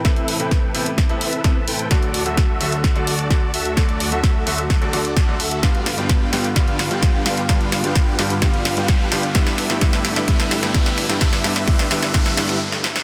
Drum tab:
HH |xxoxx-oxxxoxx-ox|xxoxx-oxxxoxx-ox|xxoxx-oxxxoxx-ox|xxoxx-oxxxoxx-ox|
SD |o---o---o---o---|o---o---o---o---|o---o---o---o---|o-o-o-o-o-o-o-o-|
BD |o---o---o---o---|o---o---o---o---|o---o---o---o---|o---o---o---o---|

HH |xxoxx-oxxxoxx-ox|xxoxx-oxxxoxx-ox|xxoxxxoxxxox----|
SD |o-o-o-o-o-o-o-o-|oooooooooooooooo|oooooooooooo-ooo|
BD |o---o---o---o---|o---o---o---o---|o---o---o-------|